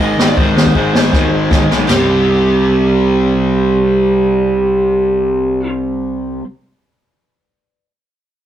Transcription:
0.00 0.14 G#1 medium
0.00 0.18 G#2 medium
0.00 0.18 D#3 medium
0.00 0.19 G#3 medium
0.00 0.28 D#5 loud
0.18 0.33 G#1 medium
0.18 0.37 G#2 medium
0.18 0.37 D#3 medium
0.18 0.38 G#3 medium
0.18 snare loud
0.28 0.37 D5 medium
0.37 0.52 G#1 medium
0.37 0.75 G#2 medium
0.37 0.75 D#3 loud
0.37 0.76 G#3 loud
0.37 1.70 C5 medium
0.37 kick loud
0.37 open hi-hat medium
0.56 0.71 G#1 medium
0.56 snare loud
0.66 kick medium
0.75 0.90 G#1 medium
0.75 0.94 G#2 medium
0.75 0.94 D#3 medium
0.75 0.95 G#3 medium
0.75 kick medium
0.75 open hi-hat medium
0.94 1.09 G#1 medium
0.94 1.13 G#2 medium
0.94 1.13 D#3 medium
0.94 1.14 G#3 medium
0.94 snare loud
1.13 1.28 D#2 medium
1.13 1.50 G#2 medium
1.13 1.51 D#3 medium
1.13 1.51 G#3 loud
1.13 kick loud
1.13 snare medium
1.32 1.47 G#1 medium
1.51 1.66 G#1 medium
1.51 1.69 G#2 medium
1.51 1.70 D#3 medium
1.51 1.70 G#3 medium
1.51 kick loud
1.51 snare medium
1.69 1.85 B1 medium
1.69 1.88 G#2 medium
1.69 1.88 D#3 medium
1.69 1.89 G#3 medium
1.69 snare medium
1.89 6.40 C2 medium
1.89 6.43 C3 medium
1.89 6.45 G3 medium
1.89 6.45 C4 loud
1.89 5.70 G4 medium
1.89 snare medium
1.89 floor tom medium
1.89 china medium

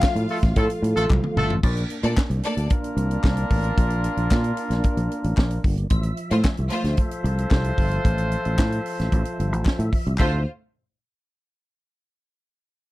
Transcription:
0.00 1.59 F3 medium
0.00 1.59 A3 medium
0.00 1.32 F4 loud
0.00 1.59 F4 medium
0.00 1.32 F5 loud
0.00 kick loud
0.00 snare loud
0.00 clap loud
0.07 0.60 E5 medium
0.16 0.26 A2 medium
0.16 closed hi-hat medium
0.29 0.38 A3 medium
0.29 0.38 F4 medium
0.29 0.38 A4 medium
0.29 open hi-hat medium
0.43 0.53 A1 medium
0.43 kick loud
0.43 snare soft
0.43 closed hi-hat soft
0.56 0.66 A2 loud
0.56 0.65 A3 medium
0.56 0.65 F4 medium
0.56 0.65 A4 medium
0.56 kick loud
0.56 closed hi-hat medium
0.61 1.35 A4 medium
0.70 closed hi-hat medium
0.82 0.92 A2 loud
0.82 closed hi-hat medium
0.96 1.06 A1 medium
0.96 1.05 A3 loud
0.96 1.05 F4 medium
0.96 1.05 A4 loud
0.96 closed hi-hat soft
1.10 1.20 C2 medium
1.10 kick loud
1.10 clap medium
1.10 high tom medium
1.24 mid tom medium
1.36 1.46 G1 loud
1.36 1.54 A3 loud
1.36 1.53 F4 loud
1.36 1.53 A4 loud
1.36 mid tom loud
1.50 1.60 A1 medium
1.50 floor tom loud
1.63 1.83 A#1 loud
1.63 5.87 A#3 medium
1.63 5.87 D4 medium
1.63 kick loud
1.63 crash loud
1.77 closed hi-hat medium
1.90 closed hi-hat medium
2.03 2.13 A#2 medium
2.03 2.15 A#3 medium
2.03 2.15 A4 medium
2.03 2.15 D5 loud
2.03 closed hi-hat soft
2.17 kick loud
2.17 snare loud
2.17 clap loud
2.30 2.40 C2 medium
2.30 closed hi-hat soft
2.43 2.67 A#3 loud
2.43 2.66 A4 medium
2.43 2.67 D5 loud
2.43 closed hi-hat medium
2.57 2.67 D2 medium
2.57 closed hi-hat soft
2.70 5.61 D4 medium
2.70 5.61 F4 medium
2.70 5.61 A#4 medium
2.70 kick loud
2.70 closed hi-hat medium
2.84 closed hi-hat soft
2.97 3.16 C2 medium
2.97 closed hi-hat medium
3.11 closed hi-hat medium
3.24 3.43 C2 loud
3.24 kick loud
3.24 snare loud
3.24 clap medium
3.37 closed hi-hat soft
3.50 3.70 A1 loud
3.50 kick loud
3.50 open hi-hat medium
3.64 closed hi-hat soft
3.77 4.07 A#1 loud
3.77 kick loud
3.77 closed hi-hat loud
3.90 closed hi-hat medium
4.04 closed hi-hat medium
4.17 4.27 A#1 medium
4.17 closed hi-hat soft
4.31 4.51 A#2 medium
4.31 kick loud
4.31 snare loud
4.31 clap loud
4.44 closed hi-hat soft
4.57 closed hi-hat medium
4.70 4.80 A#1 medium
4.70 snare soft
4.70 closed hi-hat soft
4.84 kick loud
4.84 closed hi-hat medium
4.97 5.07 A#1 medium
4.97 closed hi-hat soft
5.11 closed hi-hat medium
5.24 5.34 A1 medium
5.24 closed hi-hat soft
5.37 5.57 A#1 loud
5.37 kick loud
5.37 snare loud
5.37 clap medium
5.51 closed hi-hat medium
5.64 5.84 G1 medium
5.64 kick loud
5.64 open hi-hat medium
5.77 closed hi-hat soft
5.90 6.11 A1 loud
5.90 10.15 F3 medium
5.90 10.15 E5 medium
5.90 kick loud
5.90 closed hi-hat medium
6.03 closed hi-hat medium
6.17 closed hi-hat soft
6.31 6.41 A2 loud
6.31 6.42 A3 loud
6.31 6.42 F4 loud
6.31 6.43 C5 loud
6.31 closed hi-hat soft
6.44 kick loud
6.44 snare loud
6.44 clap loud
6.57 6.68 C2 medium
6.57 closed hi-hat soft
6.70 6.94 A3 loud
6.70 6.93 F4 loud
6.70 6.94 C5 loud
6.70 closed hi-hat medium
6.84 6.94 D2 medium
6.84 snare soft
6.84 closed hi-hat medium
6.97 9.88 F4 medium
6.97 9.88 A4 medium
6.97 9.88 C5 loud
6.97 kick loud
6.97 closed hi-hat medium
7.11 closed hi-hat medium
7.24 7.44 C2 loud
7.24 closed hi-hat medium
7.38 closed hi-hat soft
7.51 7.71 C2 loud
7.51 kick loud
7.51 snare loud
7.51 clap medium
7.64 closed hi-hat medium
7.78 7.98 G1 medium
7.78 kick medium
7.78 open hi-hat medium
7.91 closed hi-hat soft
8.05 8.34 A1 loud
8.05 kick loud
8.05 closed hi-hat medium
8.18 closed hi-hat medium
8.32 closed hi-hat medium
8.45 8.55 A1 medium
8.45 closed hi-hat soft
8.59 8.78 A2 loud
8.59 kick loud
8.59 snare loud
8.59 clap loud
8.72 closed hi-hat soft
8.86 open hi-hat medium
9.00 9.09 A1 medium
9.00 snare soft
9.00 closed hi-hat soft
9.12 9.22 A1 loud
9.12 kick loud
9.12 closed hi-hat medium
9.25 closed hi-hat medium
9.40 9.52 G1 medium
9.40 closed hi-hat medium
9.52 9.62 A1 medium
9.52 closed hi-hat soft
9.65 kick loud
9.65 snare loud
9.65 clap medium
9.79 9.89 A2 loud
9.79 closed hi-hat medium
9.93 kick loud
9.93 open hi-hat medium
10.07 10.16 C2 medium
10.07 closed hi-hat soft
10.18 10.44 D2 loud
10.18 10.44 D3 medium
10.18 10.44 A3 medium
10.18 10.38 A3 medium
10.18 10.44 C4 medium
10.18 10.44 E4 medium
10.18 10.44 F4 medium
10.18 10.38 F4 medium
10.18 10.44 C5 loud
10.18 10.38 C5 medium
10.18 kick loud
10.18 clap medium
10.18 crash medium

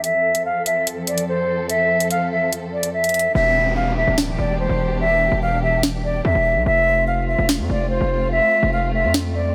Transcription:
0.04 3.32 F2 medium
0.04 3.32 F3 medium
0.04 3.32 C4 medium
0.04 3.32 A4 medium
0.04 0.43 E5 loud
0.04 closed hi-hat medium
0.35 closed hi-hat medium
0.45 0.65 F5 medium
0.66 0.86 E5 medium
0.66 closed hi-hat medium
0.87 closed hi-hat medium
1.07 1.27 D5 medium
1.07 closed hi-hat medium
1.18 closed hi-hat medium
1.28 1.67 C5 medium
1.69 2.08 E5 loud
1.69 closed hi-hat medium
2.00 closed hi-hat medium
2.11 2.30 F5 medium
2.11 closed hi-hat medium
2.32 2.51 E5 medium
2.53 closed hi-hat medium
2.73 2.92 D5 medium
2.83 closed hi-hat medium
2.93 3.32 E5 medium
3.04 closed hi-hat medium
3.09 closed hi-hat medium
3.14 closed hi-hat medium
3.19 closed hi-hat medium
3.35 4.04 E1 loud
3.35 6.63 B2 medium
3.35 6.63 E3 medium
3.35 6.63 D4 medium
3.35 6.63 G4 medium
3.35 3.74 E5 loud
3.35 downlifter medium
3.76 3.96 F5 medium
3.97 4.17 E5 medium
4.07 4.37 D1 loud
4.18 snare loud
4.38 4.68 E1 loud
4.38 4.58 D5 medium
4.59 4.98 C5 medium
4.69 5.29 E1 loud
5.00 5.39 E5 loud
5.32 6.21 E1 loud
5.42 5.62 F5 medium
5.63 5.82 E5 medium
5.83 snare loud
6.04 6.24 D5 medium
6.25 6.35 E2 loud
6.25 6.64 E5 loud
6.35 6.57 E1 loud
6.56 6.65 B1 loud
6.66 7.36 F1 loud
6.66 9.55 A3 medium
6.66 9.55 C4 medium
6.66 9.55 F4 medium
6.66 7.05 E5 loud
7.07 7.27 F5 medium
7.28 7.48 E5 medium
7.38 7.61 E1 loud
7.49 snare loud
7.59 7.69 F2 loud
7.70 7.99 F1 loud
7.70 7.89 D5 medium
7.90 8.29 C5 medium
8.01 8.40 F1 loud
8.32 8.70 E5 loud
8.63 9.05 F1 loud
8.73 8.93 F5 medium
8.94 9.13 E5 medium
9.04 9.53 F2 medium
9.14 snare loud
9.35 9.55 D5 medium

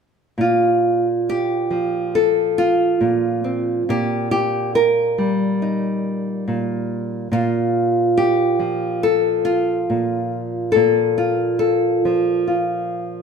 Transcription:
0.38 2.99 A#2 medium
0.38 2.14 F4 medium
1.29 2.15 G4 medium
1.70 3.88 F3 soft
2.15 3.45 A4 medium
2.58 3.88 F4 medium
3.01 3.82 A#2 medium
3.44 3.82 C4 soft
3.89 6.47 A#2 medium
3.89 4.30 G4 medium
4.31 4.74 G4 medium
4.75 7.33 A#4 medium
5.18 7.28 G3 medium
5.62 7.28 D#4 soft
6.48 7.31 A#2 medium
7.32 9.88 A#2 medium
7.32 9.04 F4 medium
8.17 9.03 G4 medium
8.59 12.05 F3 medium
9.03 10.32 A4 medium
9.45 11.17 F4 medium
9.90 10.70 A#2 medium
10.72 13.22 A#2 medium
10.72 11.58 A4 medium
11.18 12.46 F4 medium
11.59 13.22 A4 medium
12.05 13.22 F3 soft
12.48 13.22 F4 soft

